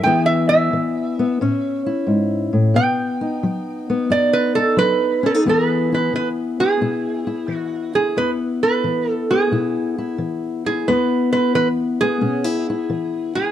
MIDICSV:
0, 0, Header, 1, 3, 480
1, 0, Start_track
1, 0, Key_signature, 4, "major"
1, 0, Tempo, 675676
1, 28, Time_signature, 4, 2, 24, 8
1, 9602, End_track
2, 0, Start_track
2, 0, Title_t, "Resonator guitar played with a steel bar"
2, 0, Program_c, 0, 25
2, 25, Note_on_c, 0, 79, 100
2, 181, Note_off_c, 0, 79, 0
2, 184, Note_on_c, 0, 76, 87
2, 339, Note_off_c, 0, 76, 0
2, 347, Note_on_c, 0, 76, 105
2, 1282, Note_off_c, 0, 76, 0
2, 1961, Note_on_c, 0, 79, 97
2, 2889, Note_off_c, 0, 79, 0
2, 2924, Note_on_c, 0, 74, 84
2, 3074, Note_off_c, 0, 74, 0
2, 3079, Note_on_c, 0, 71, 88
2, 3231, Note_off_c, 0, 71, 0
2, 3234, Note_on_c, 0, 69, 81
2, 3389, Note_off_c, 0, 69, 0
2, 3400, Note_on_c, 0, 71, 103
2, 3738, Note_on_c, 0, 69, 81
2, 3777, Note_off_c, 0, 69, 0
2, 3863, Note_off_c, 0, 71, 0
2, 3903, Note_on_c, 0, 70, 80
2, 4024, Note_off_c, 0, 70, 0
2, 4024, Note_on_c, 0, 71, 80
2, 4214, Note_off_c, 0, 71, 0
2, 4223, Note_on_c, 0, 71, 78
2, 4356, Note_off_c, 0, 71, 0
2, 4373, Note_on_c, 0, 71, 81
2, 4458, Note_off_c, 0, 71, 0
2, 4690, Note_on_c, 0, 68, 78
2, 5357, Note_off_c, 0, 68, 0
2, 5357, Note_on_c, 0, 66, 78
2, 5640, Note_off_c, 0, 66, 0
2, 5649, Note_on_c, 0, 68, 76
2, 5804, Note_off_c, 0, 68, 0
2, 5809, Note_on_c, 0, 71, 87
2, 5894, Note_off_c, 0, 71, 0
2, 6130, Note_on_c, 0, 71, 82
2, 6464, Note_off_c, 0, 71, 0
2, 6464, Note_on_c, 0, 69, 82
2, 6577, Note_off_c, 0, 69, 0
2, 6611, Note_on_c, 0, 68, 81
2, 7566, Note_off_c, 0, 68, 0
2, 7575, Note_on_c, 0, 68, 76
2, 7727, Note_off_c, 0, 68, 0
2, 7728, Note_on_c, 0, 71, 89
2, 8024, Note_off_c, 0, 71, 0
2, 8045, Note_on_c, 0, 71, 84
2, 8198, Note_off_c, 0, 71, 0
2, 8206, Note_on_c, 0, 71, 92
2, 8292, Note_off_c, 0, 71, 0
2, 8529, Note_on_c, 0, 68, 91
2, 9453, Note_off_c, 0, 68, 0
2, 9486, Note_on_c, 0, 68, 86
2, 9602, Note_off_c, 0, 68, 0
2, 9602, End_track
3, 0, Start_track
3, 0, Title_t, "Steel-string acoustic guitar"
3, 0, Program_c, 1, 25
3, 36, Note_on_c, 1, 40, 78
3, 39, Note_on_c, 1, 52, 69
3, 43, Note_on_c, 1, 59, 64
3, 48, Note_on_c, 1, 64, 65
3, 53, Note_on_c, 1, 68, 74
3, 354, Note_off_c, 1, 64, 0
3, 363, Note_on_c, 1, 64, 59
3, 483, Note_off_c, 1, 40, 0
3, 510, Note_off_c, 1, 52, 0
3, 519, Note_on_c, 1, 52, 67
3, 838, Note_off_c, 1, 59, 0
3, 847, Note_on_c, 1, 59, 63
3, 964, Note_off_c, 1, 52, 0
3, 977, Note_off_c, 1, 64, 0
3, 978, Note_off_c, 1, 59, 0
3, 985, Note_off_c, 1, 68, 0
3, 1002, Note_on_c, 1, 45, 86
3, 1008, Note_on_c, 1, 61, 67
3, 1324, Note_on_c, 1, 64, 63
3, 1446, Note_off_c, 1, 45, 0
3, 1468, Note_on_c, 1, 44, 68
3, 1793, Note_off_c, 1, 44, 0
3, 1796, Note_on_c, 1, 45, 69
3, 1938, Note_off_c, 1, 64, 0
3, 1942, Note_off_c, 1, 61, 0
3, 1948, Note_on_c, 1, 47, 84
3, 1952, Note_off_c, 1, 45, 0
3, 1957, Note_on_c, 1, 59, 68
3, 2281, Note_on_c, 1, 63, 59
3, 2400, Note_off_c, 1, 47, 0
3, 2438, Note_on_c, 1, 54, 71
3, 2760, Note_off_c, 1, 59, 0
3, 2769, Note_on_c, 1, 59, 65
3, 2885, Note_off_c, 1, 54, 0
3, 2904, Note_off_c, 1, 63, 0
3, 2910, Note_on_c, 1, 42, 75
3, 2914, Note_on_c, 1, 63, 69
3, 3238, Note_off_c, 1, 63, 0
3, 3247, Note_on_c, 1, 63, 66
3, 3362, Note_off_c, 1, 42, 0
3, 3387, Note_on_c, 1, 54, 69
3, 3713, Note_off_c, 1, 63, 0
3, 3716, Note_on_c, 1, 61, 66
3, 3797, Note_off_c, 1, 61, 0
3, 3797, Note_on_c, 1, 63, 57
3, 3840, Note_off_c, 1, 54, 0
3, 3861, Note_off_c, 1, 59, 0
3, 3873, Note_on_c, 1, 40, 75
3, 3875, Note_off_c, 1, 63, 0
3, 3878, Note_on_c, 1, 52, 60
3, 3882, Note_on_c, 1, 59, 60
3, 3886, Note_on_c, 1, 64, 63
3, 3893, Note_on_c, 1, 68, 68
3, 4205, Note_off_c, 1, 64, 0
3, 4208, Note_on_c, 1, 64, 53
3, 4323, Note_off_c, 1, 40, 0
3, 4353, Note_off_c, 1, 52, 0
3, 4356, Note_on_c, 1, 52, 58
3, 4683, Note_off_c, 1, 59, 0
3, 4686, Note_on_c, 1, 59, 53
3, 4804, Note_off_c, 1, 52, 0
3, 4839, Note_off_c, 1, 64, 0
3, 4839, Note_on_c, 1, 47, 64
3, 4842, Note_on_c, 1, 64, 65
3, 5161, Note_off_c, 1, 64, 0
3, 5164, Note_on_c, 1, 64, 59
3, 5286, Note_off_c, 1, 47, 0
3, 5314, Note_on_c, 1, 52, 62
3, 5646, Note_off_c, 1, 64, 0
3, 5649, Note_on_c, 1, 64, 59
3, 5764, Note_off_c, 1, 52, 0
3, 5800, Note_on_c, 1, 40, 75
3, 5802, Note_off_c, 1, 59, 0
3, 5805, Note_on_c, 1, 59, 63
3, 6127, Note_off_c, 1, 64, 0
3, 6130, Note_on_c, 1, 64, 52
3, 6247, Note_off_c, 1, 40, 0
3, 6280, Note_on_c, 1, 52, 65
3, 6379, Note_off_c, 1, 68, 0
3, 6611, Note_off_c, 1, 59, 0
3, 6614, Note_on_c, 1, 59, 57
3, 6727, Note_off_c, 1, 52, 0
3, 6759, Note_on_c, 1, 47, 69
3, 6763, Note_off_c, 1, 64, 0
3, 6766, Note_on_c, 1, 64, 63
3, 7090, Note_off_c, 1, 64, 0
3, 7092, Note_on_c, 1, 64, 63
3, 7206, Note_off_c, 1, 47, 0
3, 7234, Note_on_c, 1, 52, 64
3, 7573, Note_off_c, 1, 64, 0
3, 7575, Note_on_c, 1, 64, 60
3, 7683, Note_off_c, 1, 52, 0
3, 7730, Note_on_c, 1, 40, 76
3, 7731, Note_off_c, 1, 59, 0
3, 7734, Note_on_c, 1, 59, 62
3, 8050, Note_off_c, 1, 64, 0
3, 8053, Note_on_c, 1, 64, 53
3, 8171, Note_off_c, 1, 40, 0
3, 8204, Note_on_c, 1, 52, 61
3, 8534, Note_off_c, 1, 59, 0
3, 8537, Note_on_c, 1, 59, 56
3, 8647, Note_off_c, 1, 52, 0
3, 8673, Note_off_c, 1, 64, 0
3, 8676, Note_on_c, 1, 61, 62
3, 8679, Note_on_c, 1, 47, 68
3, 8839, Note_off_c, 1, 61, 0
3, 8839, Note_on_c, 1, 64, 51
3, 8999, Note_off_c, 1, 64, 0
3, 9021, Note_on_c, 1, 64, 63
3, 9124, Note_off_c, 1, 47, 0
3, 9162, Note_on_c, 1, 52, 63
3, 9485, Note_off_c, 1, 64, 0
3, 9493, Note_on_c, 1, 64, 57
3, 9602, Note_off_c, 1, 52, 0
3, 9602, Note_off_c, 1, 59, 0
3, 9602, Note_off_c, 1, 64, 0
3, 9602, End_track
0, 0, End_of_file